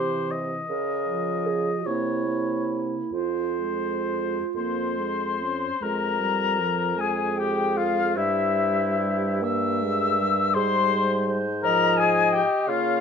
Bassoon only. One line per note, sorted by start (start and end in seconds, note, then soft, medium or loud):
0.00 0.56 C3 soft
0.70 1.72 C#3 soft
1.86 2.97 C3 soft
3.13 4.39 F2 soft
4.55 5.68 F2 soft
5.82 8.17 F2 soft
8.16 10.55 G2 soft
10.56 12.39 G#2 medium
12.68 13.01 C#3 medium